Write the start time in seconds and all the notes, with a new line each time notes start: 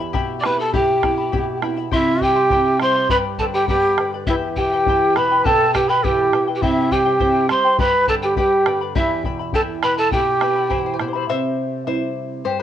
Already playing: E2 B3 E4 G4
0.00 E4 E5 B5
0.13 B2 E4 G4 E5 G5 B5, bombo low
0.40 D5 G5 D6, bombo rim
0.44 B3 E4 G4 B4 E5 B5
0.58 E4 A4 E5 A5 B5
0.73 B2 E4 G4 E5 G5 B5, bombo low
1.03 B3 E4 G4 E5 G5 B5, bombo rim, bombo low
1.18 E4 E5 B5
1.32 B2 E4 G4 E5 G5 B5, bombo low
1.62 B3 E4 G4 E5 G5 B5, bombo rim
1.77 E4 E5 B5
1.91 C3 E4 G4 E5 G5 C6, bombo low
2.21 G3 E4 G4 E5 G5 C6, bombo low
2.36 E4 E5 C6
2.50 C4 E4 G4 E5 G5 C6, bombo low
2.80 G3 E4 C5 E5 G5 C6, bombo rim
2.96 E4 E5 C6
3.09 G2 G4 B4 D5 G5 B5, bombo low
3.38 D3 A4 B4 D5 G5 A5 B5, bombo low
3.53 G4 B4 D5 G5 B5
3.68 B3 G4 B4 D5 G5 B5, bombo low
3.98 D3 B4 D5 G5 B5, bombo rim
4.14 B4 D5 B5
4.26 E2 E4 G4 B4 E5 G5, bombo low
4.56 B2 E4 G4 B4 E5 G5, bombo low
4.73 E4 B4 G5
4.86 E3 E4 G4 B4 E5 G5, bombo low
5.16 B2 E4 B4 E5 G5 B5, bombo rim
5.31 E4 B4 G5
5.44 B2 E4 G4 A4 B4 E5 G5 A5, bombo low
5.74 B3 E4 G4 B4 E5 G5, bombo rim, bombo low
5.89 E4 B4 G5 B5
6.04 E3 E4 G4 B4 E5 G5, bombo low
6.32 B2 E4 B4 E5 G5, bombo rim
6.48 E4 B4 G5
6.55 G4 G5
6.62 C3 E4 G4 C5 E5 G5, bombo low
6.91 G3 E4 G4 C5 E5 G5, bombo low
7.05 E4 C5 G5
7.20 C3 E4 G4 C5 E5 G5, bombo low
7.49 G3 E4 C5 E5 G5 C6, bombo rim
7.64 E4 C5 G5
7.78 G2 G4 B4 D5 G5 B5, bombo low
8.07 D3 A4 B4 D5 G5 A5 B5, bombo low
8.22 G4 B4 D5 G5 B5
8.36 G3 G4 B4 D5 G5 B5, bombo low
8.66 D3 B4 D5 G5 B5, bombo rim
8.81 B4 D5 B5
8.95 E2 E4 G4 E5 G5 B5, bombo low
9.24 B2 E4 E5 G5 B5, bombo low
9.39 E4 E5 B5
9.53 E3 E4 G4 A4 E5 G5 A5 B5, bombo low
9.83 B2 E4 B4 E5 G5 B5, bombo rim
9.98 E4 A4 E5 A5 B5
10.11 B2 E4 G4 E5 G5 B5, bombo low
10.41 B3 E4 G4 B4 E5 G5 B5, bombo rim
10.56 E4 E5 B5
10.69 E3 E4 G4 C5 E5 G5 B5, bombo low
10.78 C5
10.86 C5
10.93 C5
10.99 B2 E4 C5 E5 G5 B5, bombo rim
11.08 C5
11.13 E4 C5 E5 B5
11.29 C3 C5 E5
11.86 G3 C4 E4 C5 E5
12.44 G2 G4 C5